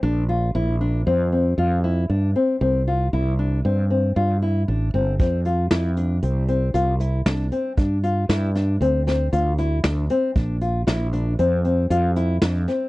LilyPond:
<<
  \new Staff \with { instrumentName = "Nylon-string guitar" } { \time 5/4 \key bes \lydian \tempo 4 = 116 d'8 f'8 e'8 d'8 c'8 c'8 f'8 e'8 d'8 c'8 | c'8 f'8 e'8 d'8 c'8 c'8 f'8 e'8 d'8 c'8 | c'8 f'8 e'8 d'8 c'8 c'8 f'8 e'8 d'8 c'8 | d'8 f'8 e'8 d'8 c'8 c'8 f'8 e'8 d'8 c'8 |
d'8 f'8 e'8 d'8 c'8 c'8 f'8 e'8 d'8 c'8 | }
  \new Staff \with { instrumentName = "Fretless electric bass" } { \clef bass \time 5/4 \key bes \lydian bes,,4 bes,,4 f,4 f,4 g,8 r8 | c,4 c,4 g,4 g,4 a,,8 g,,8 | f,4 f,4 c,4 c,4 c,8 r8 | g,4 g,4 d,4 d,4 d,8 r8 |
bes,,4 bes,,4 f,4 f,4 f,8 r8 | }
  \new DrumStaff \with { instrumentName = "Drums" } \drummode { \time 5/4 r4 r4 r4 r4 r4 | r4 r4 r4 r4 r4 | <hh bd>8 hh8 <hh sn>8 hh8 hh8 hh8 hh8 hh8 <hh sn>8 hh8 | <hh bd>8 hh8 <hh sn>8 <hh sn>8 hh8 <hh sn>8 hh8 hh8 <hh sn>8 hh8 |
<hh bd>8 hh8 <hh sn>8 hh8 hh8 hh8 hh8 hh8 <hh sn>8 <hh sn>8 | }
>>